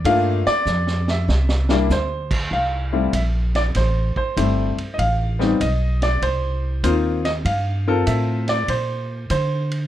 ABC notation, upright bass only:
X:1
M:4/4
L:1/8
Q:"Swing" 1/4=97
K:F
V:1 name="Upright bass" clef=bass
G,, z F,,2 C,,2 D,,2 | C,,2 B,,,2 A,,, z G,,, z | A,,,2 =B,,,2 C,,2 _E,,2 | G,,2 A,,2 B,,2 D,2 |]